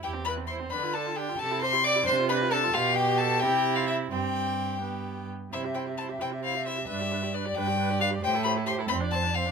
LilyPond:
<<
  \new Staff \with { instrumentName = "Violin" } { \time 6/8 \key c \major \tempo 4. = 88 g''8 b''8 c'''8 b''8 a''8 g''8 | a''8 c'''8 d'''8 c'''8 b''8 a''8 | f''8 g''8 a''8 g''8. f''16 e''8 | g''2~ g''8 r8 |
e''8 g''8 a''8 g''8 f''8 e''8 | e''4 d''8 g''4 f''8 | g''8 b''8 c'''8 b''8 a''8 f''8 | }
  \new Staff \with { instrumentName = "Violin" } { \time 6/8 \key c \major g'8 b'8 c''8 b'8 a'8 g'8 | a'8 c''8 d''8 c''8 b'8 a'8 | f'8 g'8 a'8 g'8. f'16 e'8 | g'2~ g'8 r8 |
c''16 e''16 c''16 e''16 c''16 e''16 c''16 e''16 c''16 e''16 c''16 e''16 | b'16 d''16 b'16 d''16 b'16 d''16 b'16 d''16 b'16 d''16 b'16 d''16 | c''16 a'16 c''16 a'16 c''16 a'16 c''16 d''16 c''16 d''16 c''16 d''16 | }
  \new Staff \with { instrumentName = "Viola" } { \time 6/8 \key c \major e'16 c'16 e'16 c'16 e'16 c'16 d'16 f'16 d'16 f'16 d'16 f'16 | g'16 e'16 g'16 e'16 g'16 e'16 d'16 f'16 d'16 f'16 d'16 f'16 | g'4. e'4. | c'4. b4 r8 |
e'16 g'16 e'16 g'16 e'16 g'16 e'16 g'16 e'16 g'16 e'16 g'16 | d'16 g'16 d'16 g'16 d'16 g'16 d'16 g'16 d'16 g'16 d'16 g'16 | g'16 e'16 g'16 e'16 g'16 e'16 c'16 d'16 c'16 d'16 c'16 d'16 | }
  \new Staff \with { instrumentName = "Cello" } { \clef bass \time 6/8 \key c \major e,4. d4. | c4. c4. | b,4. c4. | g,2~ g,8 r8 |
c4. c4. | g,4. g,4. | a,4. f,4. | }
>>